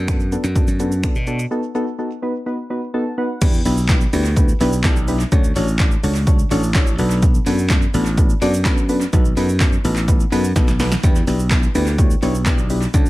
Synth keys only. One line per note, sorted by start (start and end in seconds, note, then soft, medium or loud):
0.08 0.19 B3 medium
0.08 0.19 D4 medium
0.08 0.19 F#4 medium
0.08 0.19 A4 loud
0.32 0.43 B3 medium
0.32 0.43 D4 medium
0.32 0.43 F#4 medium
0.32 0.43 A4 medium
0.56 0.67 B3 medium
0.56 0.67 D4 medium
0.56 0.67 F#4 medium
0.56 0.67 A4 medium
0.79 0.90 B3 medium
0.79 0.90 D4 medium
0.79 0.90 F#4 medium
0.79 0.91 A4 medium
1.03 1.14 B3 loud
1.03 1.14 D4 loud
1.03 1.14 F#4 loud
1.03 1.14 A4 loud
1.27 1.38 B3 medium
1.27 1.38 D4 medium
1.27 1.38 F#4 medium
1.27 1.38 A4 loud
1.51 1.62 B3 loud
1.51 1.62 D#4 loud
1.51 1.62 F#4 loud
1.51 1.62 A4 loud
1.75 1.86 B3 loud
1.75 1.86 D#4 loud
1.75 1.86 F#4 loud
1.75 1.86 A4 loud
1.98 2.09 B3 medium
1.98 2.09 D#4 medium
1.98 2.10 F#4 medium
1.98 2.10 A4 medium
2.22 2.33 B3 medium
2.22 2.33 D#4 medium
2.22 2.33 F#4 medium
2.22 2.33 B4 medium
2.46 2.57 B3 medium
2.46 2.57 D#4 medium
2.46 2.57 F#4 medium
2.46 2.57 B4 medium
2.70 2.81 B3 medium
2.70 2.81 D#4 medium
2.70 2.81 F#4 medium
2.70 2.81 B4 medium
2.94 3.05 B3 loud
2.94 3.05 D#4 loud
2.94 3.05 F#4 loud
2.94 3.05 A4 loud
2.94 3.16 A5 medium
3.18 3.28 B3 medium
3.18 3.28 D#4 medium
3.18 3.29 F#4 medium
3.18 3.29 B4 loud
3.18 3.40 F#5 medium
3.41 3.52 B3 loud
3.41 3.52 D4 loud
3.41 3.52 E4 loud
3.41 3.52 G4 loud
3.41 3.53 B4 loud
3.65 3.76 B3 medium
3.65 3.76 D4 medium
3.65 3.76 E4 medium
3.65 3.76 G4 medium
3.65 3.76 B4 loud
3.89 4.00 B3 medium
3.89 4.00 D4 medium
3.89 4.00 E4 medium
3.89 4.00 G4 medium
3.89 4.00 B4 loud
4.13 4.24 B3 medium
4.13 4.24 D4 medium
4.13 4.24 E4 medium
4.13 4.24 G4 medium
4.13 4.24 B4 loud
4.37 4.47 B3 medium
4.37 4.47 D4 medium
4.37 4.48 E4 medium
4.37 4.48 G4 medium
4.37 4.48 B4 medium
4.60 4.71 B3 loud
4.60 4.71 D4 loud
4.60 4.71 E4 loud
4.60 4.71 G4 loud
4.60 4.71 B4 loud
4.84 4.95 B3 loud
4.84 4.95 D4 loud
4.84 4.95 E4 loud
4.84 4.95 G4 loud
4.84 4.95 A4 loud
5.08 5.19 B3 medium
5.08 5.19 D4 medium
5.08 5.19 E4 medium
5.08 5.19 G4 medium
5.08 5.19 B4 loud
5.32 5.43 C#4 loud
5.32 5.43 D4 loud
5.32 5.43 F#4 loud
5.32 5.43 A4 loud
5.32 5.43 C#5 loud
5.55 5.66 C#4 medium
5.55 5.66 D4 medium
5.55 5.67 F#4 medium
5.55 5.67 A4 medium
5.55 5.67 C#5 medium
5.79 5.90 C#4 medium
5.79 5.90 D4 medium
5.79 5.90 F#4 medium
5.79 5.90 A4 medium
5.79 5.91 D5 medium
6.03 6.14 C#4 medium
6.03 6.14 D4 medium
6.03 6.14 F#4 medium
6.03 6.14 A4 medium
6.03 6.14 C#5 loud
6.27 6.38 C#4 medium
6.27 6.38 D4 medium
6.27 6.38 F#4 medium
6.27 6.38 A4 medium
6.27 6.38 C#5 loud
6.51 6.62 C#4 loud
6.51 6.62 D4 loud
6.51 6.62 F#4 loud
6.51 6.62 A4 loud
6.51 6.62 C#5 loud
6.75 6.86 C#4 loud
6.75 6.86 D4 loud
6.75 6.86 F#4 loud
6.75 6.86 A4 loud
6.75 6.86 C#5 loud
6.98 7.37 B3 medium
6.98 7.37 D4 medium
6.98 7.37 F#4 medium
6.98 7.37 A4 medium
6.98 7.37 B4 loud
7.46 7.57 B3 medium
7.46 7.57 D4 medium
7.46 7.57 F#4 medium
7.46 7.57 A4 medium
7.46 7.57 B4 loud
7.70 7.81 B3 medium
7.70 7.81 D4 medium
7.70 7.81 F#4 medium
7.70 7.81 A4 medium
7.70 7.81 B4 loud
7.94 8.05 B3 medium
7.94 8.05 D4 medium
7.94 8.05 F#4 medium
7.94 8.05 A4 medium
7.94 8.05 B4 loud
8.18 8.28 B3 medium
8.18 8.29 D4 medium
8.18 8.29 F#4 medium
8.18 8.29 A4 medium
8.18 8.29 B4 loud
8.41 8.52 B3 loud
8.41 8.52 D4 loud
8.41 8.52 F#4 loud
8.41 8.52 A4 loud
8.41 8.53 D5 loud
8.65 8.76 B3 loud
8.65 8.76 D4 loud
8.65 8.76 F#4 loud
8.65 8.76 A4 loud
8.65 8.76 B4 loud
8.89 9.00 B3 medium
8.89 9.00 D4 medium
8.89 9.00 F#4 medium
8.89 9.00 A4 medium
8.89 9.00 B4 loud
9.13 9.24 B3 loud
9.13 9.24 D#4 loud
9.13 9.24 F#4 loud
9.13 9.24 A4 loud
9.13 9.24 B4 loud
9.37 9.47 B3 medium
9.37 9.48 D#4 medium
9.37 9.48 F#4 medium
9.37 9.48 A4 medium
9.37 9.48 B4 loud
9.60 9.71 B3 medium
9.60 9.71 D#4 medium
9.60 9.71 F#4 medium
9.60 9.71 A4 medium
9.60 9.72 C#5 medium
9.84 9.95 B3 medium
9.84 9.95 D#4 medium
9.84 9.95 F#4 medium
9.84 9.95 A4 medium
9.84 9.95 B4 medium
10.08 10.19 B3 medium
10.08 10.19 D#4 medium
10.08 10.19 F#4 medium
10.08 10.19 A4 medium
10.08 10.19 B4 medium
10.32 10.43 B3 loud
10.32 10.43 D#4 loud
10.32 10.43 F#4 loud
10.32 10.43 A4 loud
10.32 10.43 B4 loud
10.56 10.67 B3 loud
10.56 10.67 D#4 loud
10.56 10.67 F#4 loud
10.56 10.67 A4 loud
10.56 10.67 B4 loud
10.80 10.90 B3 medium
10.80 10.90 D#4 medium
10.80 10.90 F#4 medium
10.80 10.91 A4 medium
10.80 10.91 B4 loud
11.03 11.14 B3 loud
11.03 11.14 D4 loud
11.03 11.14 E4 loud
11.03 11.14 G4 loud
11.03 11.14 B4 loud
11.27 11.38 B3 medium
11.27 11.38 D4 medium
11.27 11.38 E4 medium
11.27 11.38 G4 medium
11.27 11.38 B4 loud
11.51 11.62 B3 medium
11.51 11.62 D4 medium
11.51 11.62 E4 medium
11.51 11.62 G4 medium
11.51 11.62 B4 medium
11.75 11.86 B3 medium
11.75 11.86 D4 medium
11.75 11.86 E4 medium
11.75 11.86 G4 medium
11.75 11.86 B4 loud
11.99 12.09 B3 medium
11.99 12.10 D4 medium
11.99 12.10 E4 medium
11.99 12.10 G4 medium
11.99 12.10 C#5 medium
12.22 12.33 B3 loud
12.22 12.33 D4 loud
12.22 12.33 E4 loud
12.22 12.33 G4 loud
12.22 12.33 C#5 loud
12.46 12.57 B3 loud
12.46 12.57 D4 loud
12.46 12.57 E4 loud
12.46 12.57 G4 loud
12.46 12.57 D5 loud
12.70 12.81 B3 medium
12.70 12.81 D4 medium
12.70 12.81 E4 medium
12.70 12.81 G4 medium
12.70 12.81 B4 loud
12.94 13.05 A3 loud
12.94 13.05 C#4 loud
12.94 13.05 D4 loud
12.94 13.05 F#4 loud
12.94 13.05 A4 loud